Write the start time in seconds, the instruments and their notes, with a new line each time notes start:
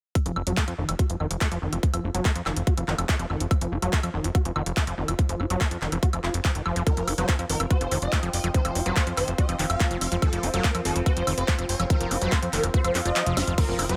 0.15 ambient pad F4, kick, closed hi-hat, high woodblock
0.26 analog synth bass F1, acid bass F3, closed hi-hat
0.36 analog synth bass F1, acid bass F4, high woodblock
0.47 analog synth bass F1, acid bass F#3, closed hi-hat
0.55 acid bass A3, ambient pad C5, kick, clap, closed hi-hat
0.68 analog synth bass F2, closed hi-hat, high woodblock
0.77 analog synth bass F1, acid bass D#3, ambient pad F5
0.89 analog synth bass F1, acid bass F3, closed hi-hat, high woodblock
0.99 acid bass F#4, kick, closed hi-hat
1.10 analog synth bass F1, acid bass F3, closed hi-hat
1.20 analog synth bass F1, acid bass D#3, high woodblock
1.31 analog synth bass F1, closed hi-hat
1.41 acid bass A3, kick, clap, closed hi-hat, high woodblock
1.52 analog synth bass F1, acid bass F3, closed hi-hat
1.62 analog synth bass F1, acid bass D#3
1.73 analog synth bass F1, acid bass F3, closed hi-hat, high woodblock
1.83 kick, closed hi-hat
1.94 analog synth bass F1, acid bass F3, closed hi-hat, high woodblock
2.04 analog synth bass F1, acid bass F4
2.15 analog synth bass F1, acid bass F#3, closed hi-hat
2.25 acid bass A3, kick, clap, closed hi-hat, high woodblock
2.36 analog synth bass F2, closed hi-hat
2.46 analog synth bass F1, acid bass D#3, clap, high woodblock
2.56 analog synth bass F1, acid bass F3, closed hi-hat
2.67 acid bass F#4, kick, closed hi-hat
2.77 analog synth bass F1, acid bass F3, closed hi-hat, high woodblock
2.88 analog synth bass F1, acid bass D#3, clap, zap
2.98 analog synth bass F1, closed hi-hat, high woodblock
3.09 acid bass A3, kick, clap, closed hi-hat
3.19 analog synth bass F1, acid bass F3, closed hi-hat
3.30 analog synth bass F1, acid bass D#3, high woodblock
3.40 analog synth bass F1, acid bass F3, closed hi-hat
3.51 kick, closed hi-hat, high woodblock
3.61 analog synth bass F1, acid bass F3, closed hi-hat
3.72 analog synth bass F1, acid bass F4
3.82 analog synth bass F1, acid bass F#3, closed hi-hat, high woodblock
3.93 acid bass A3, kick, clap, closed hi-hat
4.03 analog synth bass F2, closed hi-hat, high woodblock
4.14 analog synth bass F1, acid bass D#3
4.24 analog synth bass F1, acid bass F3, closed hi-hat
4.35 acid bass F#4, kick, closed hi-hat, high woodblock
4.45 analog synth bass F1, acid bass F3, closed hi-hat
4.56 analog synth bass F1, acid bass D#3, high woodblock
4.66 analog synth bass F1, closed hi-hat
4.77 acid bass A3, kick, clap, closed hi-hat
4.87 analog synth bass F1, acid bass F3, closed hi-hat, high woodblock
4.98 analog synth bass F1, acid bass D#3
5.08 analog synth bass F1, acid bass F3, closed hi-hat, high woodblock
5.19 kick, closed hi-hat
5.29 analog synth bass F1, acid bass F3, closed hi-hat
5.40 analog synth bass F1, acid bass F4, high woodblock
5.50 analog synth bass F1, acid bass F#3, closed hi-hat
5.61 acid bass A3, kick, clap, closed hi-hat, high woodblock
5.71 analog synth bass F2, closed hi-hat
5.82 analog synth bass F1, acid bass D#3, clap
5.92 analog synth bass F1, acid bass F3, closed hi-hat, high woodblock
6.03 acid bass F#4, kick, closed hi-hat
6.13 analog synth bass F1, acid bass F3, closed hi-hat, high woodblock
6.24 analog synth bass F1, acid bass F4, clap
6.34 analog synth bass F1, closed hi-hat
6.45 acid bass F3, kick, clap, closed hi-hat, high woodblock
6.55 analog synth bass F1, acid bass D#3, closed hi-hat
6.66 analog synth bass F1, acid bass F3, high woodblock
6.76 analog synth bass F1, acid bass F3, closed hi-hat
6.87 acid bass D#3, synth drone F3 C4, digital synth lead A#4, kick, closed hi-hat, high woodblock
6.97 analog synth bass F1, acid bass F3, closed hi-hat
7.08 analog synth bass F1, acid bass F4, open hi-hat, high woodblock
7.18 analog synth bass F1, acid bass F#3, digital synth lead C5, closed hi-hat
7.29 acid bass A3, kick, clap, closed hi-hat
7.39 analog synth bass F2, closed hi-hat, high woodblock
7.50 analog synth bass F1, acid bass D#3, digital synth lead A#4, open hi-hat
7.60 analog synth bass F1, acid bass F3, closed hi-hat, high woodblock
7.71 acid bass F#4, digital synth lead C5, kick, closed hi-hat
7.81 analog synth bass F1, acid bass F3, closed hi-hat
7.91 analog synth bass F1, acid bass D#3, open hi-hat, high woodblock
8.02 analog synth bass F1, digital synth lead D#5, closed hi-hat
8.12 acid bass A3, kick, clap, closed hi-hat, high woodblock
8.23 analog synth bass F1, acid bass F3, closed hi-hat
8.33 analog synth bass F1, digital synth lead D#5, open hi-hat
8.44 analog synth bass F1, acid bass F3, closed hi-hat, high woodblock
8.54 acid bass D#3, digital synth lead C5, kick, closed hi-hat
8.65 analog synth bass F1, acid bass F3, closed hi-hat, high woodblock
8.75 analog synth bass F1, acid bass F4, open hi-hat
8.86 analog synth bass F1, acid bass F#3, digital synth lead C5, closed hi-hat
8.96 acid bass A3, kick, clap, closed hi-hat, high woodblock
9.07 analog synth bass F2, closed hi-hat
9.17 analog synth bass F1, acid bass D#3, digital synth lead C5, clap, open hi-hat, high woodblock
9.28 analog synth bass F1, acid bass F3, closed hi-hat
9.38 acid bass F#4, digital synth lead D#5, kick, closed hi-hat
9.49 analog synth bass F1, acid bass F3, closed hi-hat, high woodblock
9.59 analog synth bass F1, acid bass D#3, clap, open hi-hat
9.70 analog synth bass F1, digital synth lead F5, closed hi-hat, high woodblock
9.80 acid bass A3, kick, clap, closed hi-hat
9.91 analog synth bass F1, acid bass F3, closed hi-hat
10.01 analog synth bass F1, digital synth lead F5, open hi-hat, high woodblock
10.12 analog synth bass F1, acid bass F3, closed hi-hat
10.22 acid bass D#3, digital synth lead A4, kick, closed hi-hat, high woodblock
10.33 analog synth bass F1, acid bass F3, closed hi-hat
10.43 analog synth bass F1, acid bass F4, open hi-hat
10.54 analog synth bass F1, acid bass F#3, digital synth lead A#4, closed hi-hat, high woodblock
10.64 acid bass A3, kick, clap, closed hi-hat
10.75 analog synth bass F2, closed hi-hat, high woodblock
10.85 analog synth bass F1, acid bass D#3, digital synth lead A4, open hi-hat
10.96 analog synth bass F1, acid bass F3, closed hi-hat
11.06 acid bass F#4, digital synth lead C5, kick, closed hi-hat, high woodblock
11.17 analog synth bass F1, acid bass F3, closed hi-hat
11.27 analog synth bass F1, acid bass D#3, open hi-hat, high woodblock
11.38 analog synth bass F1, digital synth lead C5, closed hi-hat
11.48 acid bass A3, kick, clap, closed hi-hat
11.59 analog synth bass F1, acid bass F3, closed hi-hat, high woodblock
11.69 analog synth bass F1, digital synth lead C#5, open hi-hat
11.80 analog synth bass F1, acid bass F3, closed hi-hat, high woodblock
11.90 acid bass D#3, digital synth lead A#4, kick, closed hi-hat
12.01 analog synth bass F1, acid bass F3, closed hi-hat
12.11 analog synth bass F1, acid bass F4, open hi-hat, high woodblock
12.22 analog synth bass F1, acid bass F#3, digital synth lead C5, closed hi-hat
12.32 acid bass A3, kick, clap, closed hi-hat, high woodblock
12.43 analog synth bass F2, closed hi-hat
12.53 analog synth bass F1, acid bass D#3, digital synth lead A#4, clap, open hi-hat
12.63 analog synth bass F1, acid bass F3, closed hi-hat, high woodblock
12.74 acid bass F#4, digital synth lead C5, kick, closed hi-hat, swell
12.84 analog synth bass F1, acid bass F3, closed hi-hat, high woodblock
12.95 analog synth bass F2, acid bass F4, clap, open hi-hat
13.05 analog synth bass F1, acid bass F4, digital synth lead D#5, closed hi-hat
13.16 acid bass F3, clap, closed hi-hat, high woodblock
13.26 analog synth bass F1, acid bass F3, closed hi-hat, high tom
13.37 analog synth bass F1, acid bass F#3, digital synth lead F5, snare, open hi-hat, high woodblock
13.47 analog synth bass F1, acid bass F3, closed hi-hat, mid tom
13.58 acid bass D#3, synth drone F3 C4, digital synth lead A#4, kick, closed hi-hat, crash, impact, high woodblock
13.68 analog synth bass F1, acid bass F3
13.79 analog synth bass F1, acid bass F4, open hi-hat, high woodblock
13.89 analog synth bass F1, acid bass F#3, digital synth lead C5, closed hi-hat